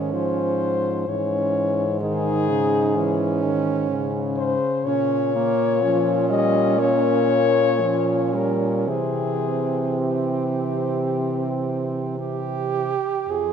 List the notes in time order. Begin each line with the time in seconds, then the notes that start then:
Already playing: G#2 D#3 C#4 G#4
0.13 F3 C5
1.08 G#2 E3 C#4 C#5
2.01 D#3 D#4 G#4
2.49 C#3
2.96 E3 C#4
3.44 D#3
3.90 C#3
4.37 C5
4.85 A#2 C#4 C#5
5.35 A#3
5.83 F3 C#4
6.30 G3 D#5
6.79 A#3 C#5
7.81 F3 C#4
8.34 G3 A#4
8.87 C3 E3 C4 G#4
9.98 G4
12.20 G4
13.28 F2 F3 G#4 C5